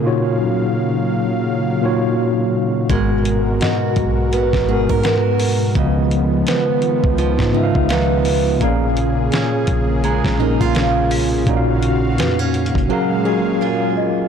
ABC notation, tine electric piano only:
X:1
M:4/4
L:1/8
Q:"Swing 16ths" 1/4=84
K:G#dor
V:1 name="Tine electric piano"
[A,,A,DEFc]3 z2 [A,,A,DEFc]2 z | [G,,G,B,FA]3 z2 [G,,G,B,FA]2 z | [C,E,G,B,d]3 z2 [C,G,B,E=e^e]2 z | [A,,A,CGe]3 z2 [A,,A,CGA]2 z |
[A,,A,CDFde]3 z [F,CGAe] [F,CFGA]2 z |]